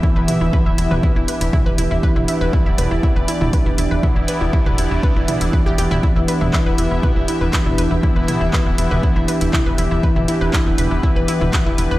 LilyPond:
<<
  \new Staff \with { instrumentName = "Ambient pad" } { \time 4/4 \key e \minor \tempo 4 = 120 << { e''1 | d''1~ | d''1 | e''1~ |
e''1 | b'1 | } \\ { <d' g'>1~ | <d' g'>1~ | <d' g'>1~ | <d' g'>1~ |
<d' g'>1~ | <d' g'>1 | } >> }
  \new Staff \with { instrumentName = "Synth arpeggio sound" } { \time 4/4 \key e \minor e'16 b'16 e'16 e'16 b'16 e'16 e'16 b'16 e'16 e'16 b'16 e'16 e'16 b'16 e'16 e'16 | b'16 e'16 e'16 b'16 e'16 e'16 b'16 e'16 e'16 b'16 e'16 e'16 b'16 e'16 e'16 b'16 | e'16 e'16 b'16 e'16 e'16 b'16 e'16 e'16 b'16 e'16 e'16 e'16 b'16 g'16 g'16 e'16 | e'16 e'16 b'16 e'16 e'16 b'16 e'16 e'16 b'16 e'16 e'16 b'16 e'16 e'16 b'16 e'16 |
e'16 b'16 e'16 e'16 b'16 e'16 e'16 b'16 e'16 e'16 b'16 e'16 e'16 b'16 e'16 e'16 | b'16 e'16 e'16 b'16 e'16 e'16 b'16 e'16 e'16 b'16 e'16 e'16 b'16 e'16 e'16 b'16 | }
  \new Staff \with { instrumentName = "Analog synth pad" } { \time 4/4 \key e \minor <e b e'>8. <e b e'>8. <e b e'>2~ <e b e'>8 | <e b e'>8. <e b e'>8. <e b e'>2~ <e b e'>8 | <e b e'>8. <e b e'>8. <e b e'>2~ <e b e'>8 | <e b e'>8. <e b e'>8. <e b e'>2~ <e b e'>8 |
<e b e'>8. <e b e'>8. <e b e'>2~ <e b e'>8 | <e b e'>8. <e b e'>8. <e b e'>2~ <e b e'>8 | }
  \new Staff \with { instrumentName = "Analog synth bass" } { \clef bass \time 4/4 \key e \minor r16 e,,16 r16 e,,16 r16 d,,16 e,,16 e,,16 r16 e,,16 r16 e,,16 r16 e,,16 e,,16 e,,16 | r16 e,,16 r16 e,,16 r16 d,,16 e,,16 e,,16 r16 e,,16 r16 e,,16 r16 e,,16 e,,16 e,,16 | r16 e,,16 r16 e,,16 r16 d,,16 e,,16 e,,16 r16 e,,16 r16 e,,16 r16 e,,16 e,,16 e,,16 | r16 e,,16 r16 e,,16 r16 d,,16 e,,16 e,,16 r16 e,,16 r16 e,,16 r16 e,,16 e,,16 e,,16 |
r16 e,,16 r16 e,,16 r16 d,,16 e,,16 e,,16 r16 e,,16 r16 e,,16 r16 e,,16 e,,16 e,,16 | r16 e,,16 r16 e,,16 r16 d,,16 e,,16 e,,16 r16 e,,16 r16 e,,16 r16 e,,16 e,,16 e,,16 | }
  \new DrumStaff \with { instrumentName = "Drums" } \drummode { \time 4/4 bd8 <hho toml>8 bd8 hho16 toml16 bd8 hho16 hho16 <bd toml>8 hho8 | bd16 toml16 hho8 bd8 <hho toml>8 bd8 hho16 toml16 <hho bd>8 hho8 | <bd toml>8 hho8 bd16 toml16 hho8 bd8 <hho toml>16 hho16 bd8 hho16 toml16 | bd8 hho16 toml16 <hc bd>8 hho8 <bd toml>8 hho8 <hc hho bd>16 toml16 hho8 |
bd8 <hho toml>8 <hc bd>8 hho16 toml16 bd8 hho16 hho16 <hc bd toml>8 hho8 | bd16 toml16 hho8 <hc bd>8 <hho toml>8 bd8 hho16 toml16 <hc hho bd>8 hho8 | }
>>